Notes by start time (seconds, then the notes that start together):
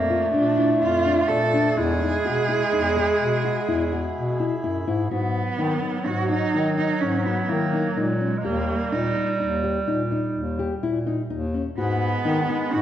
Already playing: F2 F3 A3 A#3 D5
0.10 F4
0.32 A#2 D4
0.57 E4
0.82 F2 F4
1.06 D4
1.28 A#2 D4 A4
1.53 D4
1.76 E2 G#3 E4 G#4 E5 B5
2.02 D#4
2.25 B2 F#4
2.49 E4
2.73 E2 D#4
2.97 G#4
3.20 B2
3.45 F#4
3.68 E2 E4
3.92 F#4
4.16 B2
4.40 E4
4.63 F#2 E4
4.87 G#2 E4
5.10 G#2 F#3 B3 F#4
5.58 D#3 D#4
5.82 D#4
6.06 G#2 D#4 F#4
6.29 D#4 F#4
6.54 D#3 D#4
6.77 D#4
7.01 G#2 C#4
7.24 B3 F#4
7.48 D#3 A#3 E4
7.73 D#4
7.96 A#2 G#3 D#4
8.20 G#3 C#4
8.38 G#3
8.43 D#2 G3 A#3 G4
8.92 A#2 D#4
9.16 D#4
9.40 D#2 D#4
9.64 G4
9.87 A#2 D#4
10.12 D#4
10.35 D#2
10.59 G4
10.82 A#2 E4
11.07 D#4
11.30 D#2 D#4
11.54 C#4
11.78 G#2 G#3 B3 F#4 G#4 F#5 B5
12.25 D#3 D#4
12.49 D#4
12.73 G#2 D#4 F#4